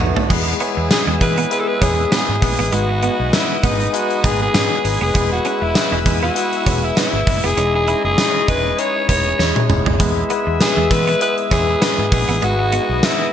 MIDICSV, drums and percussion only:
0, 0, Header, 1, 2, 480
1, 0, Start_track
1, 0, Key_signature, 4, "major"
1, 0, Tempo, 606061
1, 239, Time_signature, 4, 2, 24, 8
1, 10557, End_track
2, 0, Start_track
2, 0, Title_t, "Drums"
2, 0, Note_on_c, 9, 43, 101
2, 0, Note_on_c, 9, 54, 52
2, 77, Note_off_c, 9, 43, 0
2, 77, Note_off_c, 9, 54, 0
2, 131, Note_on_c, 9, 43, 89
2, 210, Note_off_c, 9, 43, 0
2, 238, Note_on_c, 9, 49, 101
2, 238, Note_on_c, 9, 54, 51
2, 239, Note_on_c, 9, 36, 106
2, 318, Note_off_c, 9, 36, 0
2, 318, Note_off_c, 9, 49, 0
2, 318, Note_off_c, 9, 54, 0
2, 477, Note_on_c, 9, 42, 81
2, 480, Note_on_c, 9, 54, 33
2, 556, Note_off_c, 9, 42, 0
2, 559, Note_off_c, 9, 54, 0
2, 718, Note_on_c, 9, 38, 117
2, 718, Note_on_c, 9, 54, 69
2, 719, Note_on_c, 9, 42, 75
2, 720, Note_off_c, 9, 54, 0
2, 720, Note_on_c, 9, 54, 87
2, 798, Note_off_c, 9, 38, 0
2, 798, Note_off_c, 9, 42, 0
2, 800, Note_off_c, 9, 54, 0
2, 956, Note_on_c, 9, 54, 49
2, 958, Note_on_c, 9, 42, 82
2, 959, Note_on_c, 9, 36, 99
2, 1035, Note_off_c, 9, 54, 0
2, 1037, Note_off_c, 9, 42, 0
2, 1038, Note_off_c, 9, 36, 0
2, 1090, Note_on_c, 9, 42, 52
2, 1169, Note_off_c, 9, 42, 0
2, 1197, Note_on_c, 9, 42, 91
2, 1199, Note_on_c, 9, 54, 33
2, 1277, Note_off_c, 9, 42, 0
2, 1278, Note_off_c, 9, 54, 0
2, 1438, Note_on_c, 9, 42, 81
2, 1439, Note_on_c, 9, 36, 85
2, 1446, Note_on_c, 9, 54, 59
2, 1517, Note_off_c, 9, 42, 0
2, 1518, Note_off_c, 9, 36, 0
2, 1525, Note_off_c, 9, 54, 0
2, 1677, Note_on_c, 9, 54, 61
2, 1680, Note_on_c, 9, 38, 117
2, 1680, Note_on_c, 9, 42, 87
2, 1685, Note_off_c, 9, 54, 0
2, 1685, Note_on_c, 9, 54, 82
2, 1759, Note_off_c, 9, 38, 0
2, 1759, Note_off_c, 9, 42, 0
2, 1765, Note_off_c, 9, 54, 0
2, 1919, Note_on_c, 9, 36, 100
2, 1919, Note_on_c, 9, 46, 91
2, 1921, Note_on_c, 9, 54, 54
2, 1998, Note_off_c, 9, 36, 0
2, 1998, Note_off_c, 9, 46, 0
2, 2000, Note_off_c, 9, 54, 0
2, 2158, Note_on_c, 9, 42, 98
2, 2159, Note_on_c, 9, 54, 47
2, 2237, Note_off_c, 9, 42, 0
2, 2239, Note_off_c, 9, 54, 0
2, 2396, Note_on_c, 9, 42, 77
2, 2475, Note_off_c, 9, 42, 0
2, 2638, Note_on_c, 9, 54, 70
2, 2639, Note_on_c, 9, 38, 121
2, 2639, Note_on_c, 9, 42, 77
2, 2643, Note_off_c, 9, 54, 0
2, 2643, Note_on_c, 9, 54, 90
2, 2718, Note_off_c, 9, 38, 0
2, 2718, Note_off_c, 9, 42, 0
2, 2722, Note_off_c, 9, 54, 0
2, 2877, Note_on_c, 9, 54, 48
2, 2879, Note_on_c, 9, 36, 92
2, 2879, Note_on_c, 9, 42, 79
2, 2956, Note_off_c, 9, 54, 0
2, 2958, Note_off_c, 9, 36, 0
2, 2958, Note_off_c, 9, 42, 0
2, 3011, Note_on_c, 9, 42, 53
2, 3090, Note_off_c, 9, 42, 0
2, 3119, Note_on_c, 9, 42, 103
2, 3119, Note_on_c, 9, 54, 35
2, 3198, Note_off_c, 9, 42, 0
2, 3198, Note_off_c, 9, 54, 0
2, 3250, Note_on_c, 9, 42, 48
2, 3330, Note_off_c, 9, 42, 0
2, 3359, Note_on_c, 9, 36, 92
2, 3359, Note_on_c, 9, 42, 84
2, 3366, Note_on_c, 9, 54, 57
2, 3438, Note_off_c, 9, 36, 0
2, 3438, Note_off_c, 9, 42, 0
2, 3446, Note_off_c, 9, 54, 0
2, 3597, Note_on_c, 9, 54, 58
2, 3600, Note_on_c, 9, 38, 123
2, 3600, Note_on_c, 9, 42, 92
2, 3604, Note_off_c, 9, 54, 0
2, 3604, Note_on_c, 9, 54, 87
2, 3679, Note_off_c, 9, 38, 0
2, 3679, Note_off_c, 9, 42, 0
2, 3683, Note_off_c, 9, 54, 0
2, 3839, Note_on_c, 9, 46, 87
2, 3839, Note_on_c, 9, 54, 57
2, 3918, Note_off_c, 9, 46, 0
2, 3918, Note_off_c, 9, 54, 0
2, 4078, Note_on_c, 9, 42, 94
2, 4078, Note_on_c, 9, 54, 49
2, 4079, Note_on_c, 9, 36, 104
2, 4157, Note_off_c, 9, 42, 0
2, 4157, Note_off_c, 9, 54, 0
2, 4158, Note_off_c, 9, 36, 0
2, 4315, Note_on_c, 9, 42, 76
2, 4319, Note_on_c, 9, 54, 31
2, 4394, Note_off_c, 9, 42, 0
2, 4398, Note_off_c, 9, 54, 0
2, 4556, Note_on_c, 9, 54, 70
2, 4557, Note_on_c, 9, 38, 120
2, 4557, Note_on_c, 9, 42, 75
2, 4559, Note_off_c, 9, 54, 0
2, 4559, Note_on_c, 9, 54, 91
2, 4636, Note_off_c, 9, 38, 0
2, 4636, Note_off_c, 9, 42, 0
2, 4639, Note_off_c, 9, 54, 0
2, 4796, Note_on_c, 9, 54, 51
2, 4797, Note_on_c, 9, 42, 81
2, 4798, Note_on_c, 9, 36, 93
2, 4875, Note_off_c, 9, 54, 0
2, 4877, Note_off_c, 9, 42, 0
2, 4878, Note_off_c, 9, 36, 0
2, 5038, Note_on_c, 9, 42, 98
2, 5038, Note_on_c, 9, 54, 34
2, 5117, Note_off_c, 9, 42, 0
2, 5117, Note_off_c, 9, 54, 0
2, 5169, Note_on_c, 9, 42, 52
2, 5249, Note_off_c, 9, 42, 0
2, 5278, Note_on_c, 9, 42, 83
2, 5279, Note_on_c, 9, 36, 88
2, 5286, Note_on_c, 9, 54, 53
2, 5357, Note_off_c, 9, 42, 0
2, 5358, Note_off_c, 9, 36, 0
2, 5365, Note_off_c, 9, 54, 0
2, 5517, Note_on_c, 9, 54, 60
2, 5520, Note_on_c, 9, 38, 120
2, 5520, Note_on_c, 9, 42, 97
2, 5525, Note_off_c, 9, 54, 0
2, 5525, Note_on_c, 9, 54, 90
2, 5599, Note_off_c, 9, 38, 0
2, 5600, Note_off_c, 9, 42, 0
2, 5604, Note_off_c, 9, 54, 0
2, 5759, Note_on_c, 9, 36, 106
2, 5759, Note_on_c, 9, 54, 55
2, 5760, Note_on_c, 9, 46, 88
2, 5838, Note_off_c, 9, 36, 0
2, 5839, Note_off_c, 9, 46, 0
2, 5839, Note_off_c, 9, 54, 0
2, 5998, Note_on_c, 9, 54, 49
2, 5999, Note_on_c, 9, 42, 94
2, 6078, Note_off_c, 9, 42, 0
2, 6078, Note_off_c, 9, 54, 0
2, 6237, Note_on_c, 9, 42, 77
2, 6316, Note_off_c, 9, 42, 0
2, 6478, Note_on_c, 9, 38, 127
2, 6478, Note_on_c, 9, 54, 68
2, 6479, Note_on_c, 9, 42, 75
2, 6481, Note_off_c, 9, 54, 0
2, 6481, Note_on_c, 9, 54, 91
2, 6558, Note_off_c, 9, 38, 0
2, 6558, Note_off_c, 9, 42, 0
2, 6560, Note_off_c, 9, 54, 0
2, 6716, Note_on_c, 9, 54, 49
2, 6719, Note_on_c, 9, 36, 99
2, 6719, Note_on_c, 9, 42, 78
2, 6795, Note_off_c, 9, 54, 0
2, 6798, Note_off_c, 9, 36, 0
2, 6798, Note_off_c, 9, 42, 0
2, 6958, Note_on_c, 9, 42, 93
2, 6958, Note_on_c, 9, 54, 33
2, 7037, Note_off_c, 9, 54, 0
2, 7038, Note_off_c, 9, 42, 0
2, 7198, Note_on_c, 9, 42, 84
2, 7199, Note_on_c, 9, 36, 86
2, 7206, Note_on_c, 9, 54, 57
2, 7278, Note_off_c, 9, 36, 0
2, 7278, Note_off_c, 9, 42, 0
2, 7285, Note_off_c, 9, 54, 0
2, 7439, Note_on_c, 9, 38, 60
2, 7444, Note_on_c, 9, 54, 85
2, 7518, Note_off_c, 9, 38, 0
2, 7523, Note_off_c, 9, 54, 0
2, 7572, Note_on_c, 9, 48, 68
2, 7651, Note_off_c, 9, 48, 0
2, 7679, Note_on_c, 9, 45, 106
2, 7679, Note_on_c, 9, 54, 52
2, 7758, Note_off_c, 9, 45, 0
2, 7758, Note_off_c, 9, 54, 0
2, 7812, Note_on_c, 9, 43, 101
2, 7891, Note_off_c, 9, 43, 0
2, 7917, Note_on_c, 9, 54, 49
2, 7919, Note_on_c, 9, 36, 111
2, 7919, Note_on_c, 9, 42, 97
2, 7996, Note_off_c, 9, 54, 0
2, 7998, Note_off_c, 9, 36, 0
2, 7998, Note_off_c, 9, 42, 0
2, 8158, Note_on_c, 9, 42, 77
2, 8159, Note_on_c, 9, 54, 34
2, 8237, Note_off_c, 9, 42, 0
2, 8238, Note_off_c, 9, 54, 0
2, 8399, Note_on_c, 9, 38, 118
2, 8399, Note_on_c, 9, 42, 74
2, 8399, Note_on_c, 9, 54, 69
2, 8401, Note_off_c, 9, 54, 0
2, 8401, Note_on_c, 9, 54, 84
2, 8479, Note_off_c, 9, 38, 0
2, 8479, Note_off_c, 9, 42, 0
2, 8480, Note_off_c, 9, 54, 0
2, 8636, Note_on_c, 9, 54, 50
2, 8639, Note_on_c, 9, 36, 99
2, 8639, Note_on_c, 9, 42, 82
2, 8715, Note_off_c, 9, 54, 0
2, 8718, Note_off_c, 9, 36, 0
2, 8718, Note_off_c, 9, 42, 0
2, 8771, Note_on_c, 9, 42, 54
2, 8850, Note_off_c, 9, 42, 0
2, 8879, Note_on_c, 9, 42, 95
2, 8879, Note_on_c, 9, 54, 32
2, 8958, Note_off_c, 9, 42, 0
2, 8958, Note_off_c, 9, 54, 0
2, 9010, Note_on_c, 9, 42, 49
2, 9089, Note_off_c, 9, 42, 0
2, 9119, Note_on_c, 9, 36, 88
2, 9119, Note_on_c, 9, 42, 78
2, 9126, Note_on_c, 9, 54, 56
2, 9198, Note_off_c, 9, 36, 0
2, 9198, Note_off_c, 9, 42, 0
2, 9205, Note_off_c, 9, 54, 0
2, 9358, Note_on_c, 9, 54, 60
2, 9361, Note_on_c, 9, 38, 118
2, 9361, Note_on_c, 9, 42, 99
2, 9365, Note_off_c, 9, 54, 0
2, 9365, Note_on_c, 9, 54, 91
2, 9440, Note_off_c, 9, 38, 0
2, 9441, Note_off_c, 9, 42, 0
2, 9444, Note_off_c, 9, 54, 0
2, 9599, Note_on_c, 9, 36, 107
2, 9599, Note_on_c, 9, 54, 54
2, 9600, Note_on_c, 9, 46, 84
2, 9678, Note_off_c, 9, 36, 0
2, 9678, Note_off_c, 9, 54, 0
2, 9680, Note_off_c, 9, 46, 0
2, 9839, Note_on_c, 9, 42, 91
2, 9839, Note_on_c, 9, 54, 50
2, 9918, Note_off_c, 9, 54, 0
2, 9919, Note_off_c, 9, 42, 0
2, 10077, Note_on_c, 9, 42, 83
2, 10156, Note_off_c, 9, 42, 0
2, 10319, Note_on_c, 9, 38, 120
2, 10319, Note_on_c, 9, 54, 74
2, 10320, Note_off_c, 9, 54, 0
2, 10320, Note_on_c, 9, 42, 73
2, 10320, Note_on_c, 9, 54, 84
2, 10399, Note_off_c, 9, 38, 0
2, 10399, Note_off_c, 9, 42, 0
2, 10400, Note_off_c, 9, 54, 0
2, 10557, End_track
0, 0, End_of_file